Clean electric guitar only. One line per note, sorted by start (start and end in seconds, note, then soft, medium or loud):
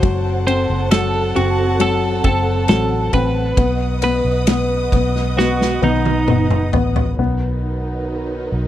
0.00 0.44 C5 loud
0.47 0.91 C5 loud
0.91 1.37 A4 loud
1.36 1.82 F#4 medium
1.81 2.24 A4 medium
2.25 2.68 A4 medium
2.69 3.13 A4 medium
3.14 3.99 B4 loud
4.04 4.89 B4 medium
5.39 5.83 F#4 loud
5.84 6.70 D#4 medium